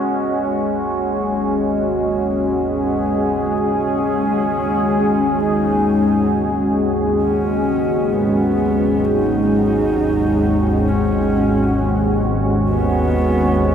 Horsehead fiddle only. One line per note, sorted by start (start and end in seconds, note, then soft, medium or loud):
0.00 0.83 B3 medium
0.81 1.73 A#3 medium
1.73 2.68 A#3 medium
2.66 3.60 B3 medium
3.58 5.41 C#4 medium
5.39 6.76 D#4 medium
7.22 8.13 C#4 medium
8.12 9.06 B3 medium
9.05 10.89 D#4 medium
10.87 12.25 C#4 medium
12.69 13.75 B3 medium